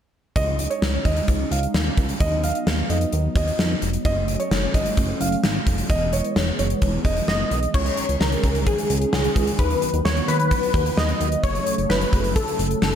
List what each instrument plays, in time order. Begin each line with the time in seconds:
0.36 analog synth bass C#2, analog synth pad G#3 C#4 D#4, grand piano D#5, kick, closed hi-hat
0.59 closed hi-hat
0.70 grand piano C#5, closed hi-hat
0.82 analog synth bass C#2, snare
1.05 analog synth bass D#2, grand piano D#5, kick, closed hi-hat
1.16 closed hi-hat
1.28 analog synth bass C#2, kick, closed hi-hat
1.51 analog synth bass C#2, grand piano F5, closed hi-hat
1.63 closed hi-hat
1.74 analog synth bass D#2, snare
1.97 analog synth bass C#2, kick, closed hi-hat
2.09 closed hi-hat
2.20 analog synth bass D#2, analog synth pad F#3 B3 D#4, grand piano D#5, kick, closed hi-hat
2.43 grand piano F5, closed hi-hat
2.55 closed hi-hat
2.67 analog synth bass D#2, snare
2.90 analog synth bass F2, grand piano D#5, closed hi-hat
3.01 closed hi-hat
3.12 analog synth bass D#2, closed hi-hat
3.36 analog synth bass D#2, grand piano D#5, kick, closed hi-hat
3.48 closed hi-hat
3.59 analog synth bass F2, snare
3.82 analog synth bass F1, closed hi-hat
3.93 closed hi-hat
4.05 analog synth bass F#1, analog synth pad A3 C#4, grand piano D#5, kick, closed hi-hat
4.28 closed hi-hat
4.40 grand piano C#5, closed hi-hat
4.51 analog synth bass F#1, snare
4.74 analog synth bass G#1, grand piano D#5, kick, closed hi-hat
4.86 closed hi-hat
4.97 analog synth bass F#1, kick, closed hi-hat
5.20 analog synth bass F#1, grand piano F5, closed hi-hat
5.32 closed hi-hat
5.44 analog synth bass G#1, snare
5.67 analog synth bass F1, kick, closed hi-hat
5.78 closed hi-hat
5.90 analog synth bass E1, analog synth pad E3 G#3 B3, grand piano D#5, kick, closed hi-hat
6.13 grand piano C#5, closed hi-hat
6.24 closed hi-hat
6.36 analog synth bass E1, snare
6.59 analog synth bass F#1, grand piano C#5, closed hi-hat
6.70 closed hi-hat
6.82 analog synth bass E1, kick, closed hi-hat
7.05 analog synth bass E1, grand piano D#5, kick, closed hi-hat
7.17 closed hi-hat
7.28 analog synth bass F#1, analog polysynth D#5, snare
7.51 analog synth bass B1, closed hi-hat
7.63 closed hi-hat
7.74 analog synth bass C#2, analog synth pad D#3 G#3 C#4, analog polysynth C#5, kick, crash
7.86 closed hi-hat
7.97 closed hi-hat
8.09 analog synth bass C#2, closed hi-hat
8.20 analog synth bass C#2, analog polysynth A#4, snare
8.32 closed hi-hat
8.44 analog synth bass C#2, kick, closed hi-hat
8.55 closed hi-hat
8.66 analog polysynth G#4, kick, closed hi-hat
8.78 closed hi-hat
8.90 analog synth bass C#2, closed hi-hat
9.01 closed hi-hat
9.13 analog synth bass C#2, analog polysynth G#4, snare
9.24 closed hi-hat
9.36 analog synth bass C#2, kick, closed hi-hat
9.47 closed hi-hat
9.59 analog synth bass D#2, analog synth pad F#3 B3, analog polysynth B4, kick, closed hi-hat
9.71 closed hi-hat
9.82 closed hi-hat
9.93 analog synth bass D#2, closed hi-hat
10.05 analog synth bass D#2, analog polysynth C#5, snare
10.17 closed hi-hat
10.28 analog synth bass D#2, analog polysynth B4, closed hi-hat
10.39 closed hi-hat
10.51 kick, closed hi-hat
10.63 closed hi-hat
10.74 analog synth bass D#2, kick, closed hi-hat
10.86 closed hi-hat
10.97 analog synth bass D#2, analog polysynth D#5, snare
11.09 closed hi-hat
11.20 analog synth bass D#2, closed hi-hat
11.32 closed hi-hat
11.43 analog synth bass F#1, analog synth pad C#3 A3, analog polysynth C#5, kick, closed hi-hat
11.55 closed hi-hat
11.67 closed hi-hat
11.78 analog synth bass F#1, closed hi-hat
11.90 analog synth bass F#1, analog polysynth B4, snare
12.01 closed hi-hat
12.13 analog synth bass F#1, kick, closed hi-hat
12.24 closed hi-hat
12.36 analog polysynth A4, kick, closed hi-hat
12.48 closed hi-hat
12.59 analog synth bass F#1, closed hi-hat
12.71 closed hi-hat
12.82 analog synth bass F#1, analog polysynth A4, snare